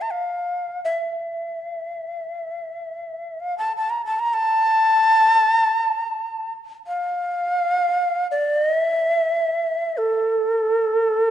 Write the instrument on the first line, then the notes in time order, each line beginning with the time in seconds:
shakuhachi
0.01 A5
0.11 F5
0.84 E5
3.40 F5
3.58 A5
3.77 A5
3.90 A#5
4.05 A5
4.20 A#5
4.34 A5
6.87 F5
8.31 D5
8.60 D#5
8.79 E5
9.97 A4